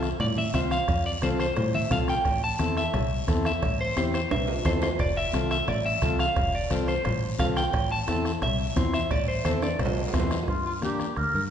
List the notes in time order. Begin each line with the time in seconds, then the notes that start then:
Already playing: C2 E5
0.03 bombo rim, short guiro
0.20 A2 D5, bombo rim, cowbell, low conga, long guiro
0.37 E5, high conga
0.54 C2 C4 F4 C5 E5, bombo low, bombo rim, cowbell, high conga, low timbale, short guiro
0.71 F5, bombo rim, short guiro
0.88 F2, bombo low, bombo rim, cowbell, long guiro
1.06 D5
1.22 C2 C4 F4 A4 C5, bombo rim, cowbell, high conga, short guiro
1.40 C5, bombo rim, short guiro
1.56 A2, bombo rim, cowbell, low conga, long guiro
1.74 E5, high conga
1.90 C2 C4 F4 A4 F5, bombo low, bombo rim, cowbell, high conga, low conga, short guiro
2.08 G5, bombo rim, short guiro
2.25 A1, bombo low, bombo rim, cowbell, long guiro
2.44 A5
2.59 E2 C4 E4 A4, bombo rim, cowbell, high conga, short guiro
2.77 E5, bombo rim, short guiro
2.94 C2, bombo rim, cowbell, low conga, long guiro
3.27 E2 C4 E4 A4, bombo low, bombo rim, cowbell, high conga, short guiro
3.45 E5, bombo rim, short guiro
3.62 A1, bombo low, bombo rim, cowbell, low conga, long guiro
3.81 C5
3.96 E2 C4 E4 G4 C5, bombo rim, cowbell, high conga, short guiro
4.14 C5, bombo rim, short guiro
4.31 C2 E5, bombo rim, cowbell, low conga, high timbale, long guiro
4.48 low timbale
4.65 E2 C4 E4 A4 C5, bombo low, bombo rim, cowbell, high conga, low timbale, short guiro
4.82 C5, bombo rim, low timbale, short guiro
4.99 F1 D5, bombo low, bombo rim, cowbell, long guiro
5.17 E5
5.33 C2 C4 F4 A4, bombo rim, cowbell, high conga, short guiro
5.51 E5, bombo rim, short guiro
5.68 A1 D5, bombo rim, cowbell, low conga, long guiro
5.86 E5
6.02 C2 C4 F4 A4, bombo low, bombo rim, cowbell, high conga, short guiro
6.19 F5, bombo rim, short guiro
6.36 F1, bombo low, bombo rim, cowbell, low conga, long guiro
6.55 D5
6.70 C2 C4 F4 A4 C5, bombo rim, cowbell, high conga, short guiro
6.88 C5, bombo rim, short guiro
7.05 A1, bombo rim, cowbell, low conga, long guiro
7.38 C2 C4 F4 A4 F5, bombo low, bombo rim, cowbell, high conga, low timbale, short guiro
7.57 G5, bombo rim, short guiro
7.73 A1, bombo low, bombo rim, cowbell, long guiro
7.92 A5
8.07 E2 C4 E4 A4, bombo rim, cowbell, high conga, short guiro
8.25 bombo rim, short guiro
8.42 C2 E5, bombo rim, cowbell, low conga, long guiro
8.76 E2 C4 E4 C5, bombo low, bombo rim, cowbell, high conga, low timbale, short guiro
8.94 E5, bombo rim, short guiro
9.11 A1 D5, bombo low, bombo rim, cowbell, low conga, long guiro
9.28 C5
9.44 E2 C4 E4 A4 C5, bombo rim, cowbell, high conga, short guiro
9.62 D5, bombo rim, high timbale, short guiro
9.79 C2 C5, bombo rim, cowbell, low conga, long guiro
9.86 low timbale
9.97 low timbale
10.08 low timbale
10.13 E2 C4 E4 C5, bombo low, bombo rim, cowbell, high conga, low conga, short guiro
10.20 low timbale
10.31 bombo rim, low timbale, short guiro
10.43 low timbale
10.48 G2 F4, bombo low, bombo rim, long guiro
10.66 F4
10.82 A#3 D4 G4, bombo rim, high conga, short guiro
11.00 bombo rim, short guiro
11.17 D2 A#4, bombo rim, long guiro
11.34 G2 A#4